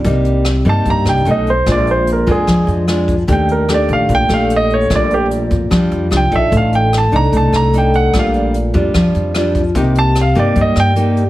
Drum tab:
HH |xxxxxxxx|xxxxxxxx|xxxxxxxx|xxxxxxxx|
SD |--r--r--|r---r-r-|--r--r--|r---r-r-|
BD |o---o---|o--oo--o|o---o---|o--oo--o|

HH |xxxxxxxx|xxxxxxxx|xxxxxxxx|
SD |--r--r--|r---r-r-|--r--r--|
BD |o---o---|o--oo--o|o---o---|